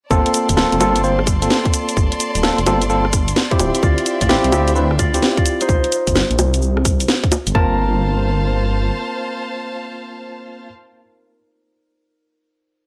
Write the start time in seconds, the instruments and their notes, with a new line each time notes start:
0.11 detuned saw bass G1, tine electric piano A#3 C4 F4 A4, violin section D5 A5 C6, kick, cabasa
0.26 closed hi-hat
0.34 closed hi-hat, cabasa
0.49 detuned saw bass D1, kick, closed hi-hat, cabasa
0.57 tine electric piano A#3 C4 F4 A4, snare, cabasa
0.72 detuned saw bass F1, closed hi-hat
0.80 detuned saw bass G1, tine electric piano A#3 C4 F4 A4, closed hi-hat, high bongo, cabasa
0.96 closed hi-hat, cabasa
1.04 tine electric piano A#3 C4 F4 C5, cabasa
1.19 cross-stick
1.27 kick, cross-stick, closed hi-hat, cabasa
1.42 tine electric piano A#3 C4 F4 A4, closed hi-hat, cabasa
1.50 snare, cabasa
1.65 kick, closed hi-hat
1.74 closed hi-hat, cabasa
1.89 closed hi-hat, cabasa
1.97 detuned saw bass G1, kick, cabasa
2.12 closed hi-hat
2.20 closed hi-hat, cabasa
2.35 detuned saw bass D1, closed hi-hat, cabasa
2.43 tine electric piano A#3 C4 F4 A4, snare, cabasa
2.58 detuned saw bass F1, closed hi-hat
2.67 detuned saw bass G1, tine electric piano A#3 C4 F4 A4, closed hi-hat, high bongo, cabasa
2.82 closed hi-hat, cabasa
2.90 tine electric piano A#3 C4 F4 A4, cabasa
3.05 cross-stick
3.13 kick, cross-stick, closed hi-hat, cabasa
3.28 closed hi-hat, cabasa
3.36 snare, cabasa
3.51 tine electric piano C4 E4 F4 G4, kick, closed hi-hat
3.59 detuned saw bass D1, violin section E5 G5, closed hi-hat, high bongo, cabasa
3.75 closed hi-hat, cabasa
3.83 detuned saw bass D2, harp F4 D5, kick, cabasa
3.98 closed hi-hat
4.06 closed hi-hat, cabasa
4.21 detuned saw bass A1, harp F4 D5, kick, closed hi-hat, cabasa
4.29 tine electric piano C4 E4 F4 G4, snare, cabasa
4.44 detuned saw bass C2, closed hi-hat
4.52 detuned saw bass D2, tine electric piano C4 E4 F4 G4, closed hi-hat, high bongo, cabasa
4.68 closed hi-hat, cabasa
4.76 tine electric piano C4 E4 F4 B4, cabasa
4.91 cross-stick
4.99 harp F4 D5, kick, cross-stick, closed hi-hat, cabasa
5.14 tine electric piano C4 E4 F4 G4, closed hi-hat, cabasa
5.22 snare, cabasa
5.37 harp F4 D5, kick, closed hi-hat
5.46 closed hi-hat, cabasa
5.61 harp D#4 C5, closed hi-hat, cabasa
5.69 detuned saw bass C2, kick, cabasa
5.84 closed hi-hat
5.92 closed hi-hat, cabasa
6.07 detuned saw bass G1, kick, closed hi-hat, cabasa
6.16 snare, cabasa
6.30 detuned saw bass A#1, closed hi-hat
6.38 detuned saw bass C2, closed hi-hat, high bongo, cabasa
6.54 closed hi-hat, cabasa
6.62 cabasa
6.77 cross-stick
6.85 kick, cross-stick, closed hi-hat, cabasa
7.00 closed hi-hat, cabasa
7.08 snare, cabasa
7.24 kick, closed hi-hat
7.32 closed hi-hat, high bongo, cabasa
7.47 detuned saw bass G1, closed hi-hat, cabasa
7.55 detuned saw bass G1, tine electric piano A#3 C4 F4 A5, harp A#4, violin section C5 F5 A5, kick, floor tom